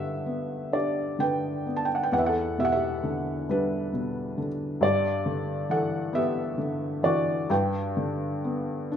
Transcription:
0.00 2.08 G2 medium
0.00 1.17 D3 soft
0.00 0.69 G4 medium
0.00 1.22 B4 medium
0.00 0.75 E5 medium
0.00 1.95 F#5 medium
0.26 1.65 B3 soft
0.72 2.08 D4 soft
0.72 1.18 G4 medium
0.72 1.21 D5 medium
1.19 2.09 D3 soft
1.19 1.74 B4 medium
1.19 1.78 G5 medium
1.66 2.11 B3 soft
1.76 1.86 A5 medium
1.85 1.94 G5 medium
1.95 2.04 F#5 medium
2.03 2.13 G5 medium
2.12 4.79 E2 medium
2.12 2.21 B4 medium
2.12 2.20 F#5 medium
2.19 2.26 E5 medium
2.26 2.57 A4 medium
2.26 2.59 F#5 medium
2.58 3.92 B2 medium
2.58 2.66 G4 medium
2.58 2.66 E5 medium
2.65 2.72 F#5 medium
2.72 3.46 G4 medium
2.72 3.45 E5 medium
3.03 4.36 D3 soft
3.49 4.79 G3 soft
3.49 4.47 D4 medium
3.49 4.46 B4 medium
3.93 4.80 B2 soft
4.38 4.81 D3 soft
4.81 7.46 G2 medium
4.81 5.68 G4 medium
4.81 5.74 D5 medium
5.26 6.56 D3 medium
5.69 7.02 E3 medium
5.69 6.13 A4 medium
5.69 6.17 F#5 medium
6.13 7.46 B3 medium
6.13 7.01 G4 medium
6.13 7.01 E5 medium
6.58 7.47 D3 soft
7.03 7.49 E3 medium
7.03 7.48 F#4 medium
7.03 7.52 D5 medium
7.50 8.97 G2 medium
7.50 8.90 B4 medium
7.50 8.89 G5 medium
7.97 8.97 D3 medium
8.44 8.97 B3 medium
8.92 8.97 D4 medium

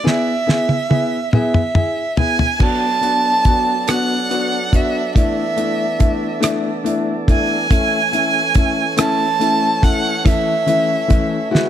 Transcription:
0.04 0.30 B3 medium
0.04 0.30 E4 medium
0.04 0.31 G#4 medium
0.04 1.34 E5 medium
0.04 snare soft
0.47 0.73 B3 medium
0.47 0.73 E4 soft
0.47 0.73 G#4 medium
0.47 snare medium
0.69 high tom soft
0.89 1.16 B3 medium
0.89 1.16 E4 medium
0.89 1.16 G#4 medium
0.89 high tom medium
1.33 1.59 B3 medium
1.33 1.59 E4 medium
1.33 1.59 G#4 medium
1.33 2.14 E5 medium
1.33 mid tom medium
1.54 mid tom medium
1.75 2.01 E4 soft
1.75 2.02 G#4 medium
1.75 mid tom medium
2.17 2.44 B3 soft
2.17 2.44 E4 soft
2.17 2.44 G#4 medium
2.17 2.64 G#5 medium
2.17 floor tom medium
2.39 floor tom medium
2.59 5.14 F#3 medium
2.59 2.86 B3 medium
2.59 7.67 B3 soft
2.59 2.86 D4 medium
2.59 7.68 D4 soft
2.59 2.86 F#4 medium
2.59 11.50 A4 soft
2.59 7.68 D5 medium
2.59 3.91 A5 loud
2.59 kick medium
2.59 crash medium
3.01 3.28 B3 medium
3.01 3.28 D4 medium
3.01 3.29 F#4 medium
3.01 closed hi-hat soft
3.45 3.71 B3 medium
3.45 3.72 D4 medium
3.45 3.72 F#4 medium
3.45 kick medium
3.45 closed hi-hat soft
3.88 4.14 B3 medium
3.88 4.14 D4 medium
3.88 4.14 F#4 medium
3.88 4.77 F#5 medium
3.88 cross-stick loud
3.88 closed hi-hat medium
4.30 4.56 B3 medium
4.30 4.57 D4 medium
4.30 4.57 F#4 medium
4.30 closed hi-hat soft
4.72 4.99 B3 medium
4.72 4.99 D4 medium
4.72 4.99 F#4 medium
4.72 5.17 E5 medium
4.72 kick medium
4.72 closed hi-hat soft
5.15 11.69 E3 medium
5.15 5.41 A3 medium
5.15 5.41 D4 medium
5.15 5.41 E4 medium
5.15 6.40 E5 medium
5.15 kick medium
5.15 closed hi-hat medium
5.56 5.83 A3 medium
5.56 5.84 D4 medium
5.56 5.84 E4 medium
5.56 closed hi-hat soft
5.99 6.26 A3 medium
5.99 6.26 D4 medium
5.99 6.26 E4 medium
5.99 kick medium
5.99 closed hi-hat soft
6.40 6.68 A3 medium
6.40 6.68 D4 medium
6.40 6.68 E4 medium
6.40 cross-stick loud
6.40 closed hi-hat medium
6.84 7.11 A3 medium
6.84 7.11 D4 medium
6.84 7.11 E4 medium
6.84 closed hi-hat soft
7.28 7.54 A3 medium
7.28 7.54 D4 medium
7.28 7.54 E4 medium
7.28 8.96 G#5 medium
7.28 kick medium
7.28 closed hi-hat soft
7.70 10.23 A3 medium
7.70 7.97 A3 medium
7.70 7.97 C#4 medium
7.70 11.49 C#4 medium
7.70 7.97 E4 medium
7.70 11.49 C#5 medium
7.70 kick medium
7.70 closed hi-hat medium
8.12 8.39 A3 medium
8.12 8.39 C#4 medium
8.12 8.39 E4 medium
8.12 closed hi-hat soft
8.54 8.81 A3 medium
8.54 8.82 C#4 medium
8.54 8.82 E4 medium
8.54 kick medium
8.54 closed hi-hat soft
8.97 9.23 A3 medium
8.97 9.24 C#4 medium
8.97 9.24 E4 loud
8.97 9.85 A5 loud
8.97 cross-stick loud
8.97 closed hi-hat medium
9.39 9.66 A3 medium
9.39 9.66 C#4 medium
9.39 9.67 E4 medium
9.39 closed hi-hat soft
9.82 10.09 A3 medium
9.82 10.09 C#4 medium
9.82 10.09 E4 medium
9.82 10.29 F#5 medium
9.82 kick medium
9.82 closed hi-hat soft
10.25 10.51 E3 medium
10.25 10.51 A3 medium
10.25 11.53 A3 medium
10.25 10.51 C#4 medium
10.25 10.52 E4 medium
10.25 11.54 E5 medium
10.25 kick medium
10.25 closed hi-hat medium
10.66 10.93 E3 medium
10.66 10.94 A3 medium
10.66 10.93 C#4 medium
10.66 10.94 E4 medium
10.66 closed hi-hat soft
11.08 11.35 E3 medium
11.08 11.35 A3 medium
11.08 11.36 C#4 medium
11.08 11.36 E4 medium
11.08 kick medium
11.08 closed hi-hat soft
11.51 11.69 G#3 medium
11.51 11.69 B3 medium
11.51 11.69 E4 medium
11.51 11.69 F#4 medium
11.51 11.69 B4 medium
11.55 snare medium

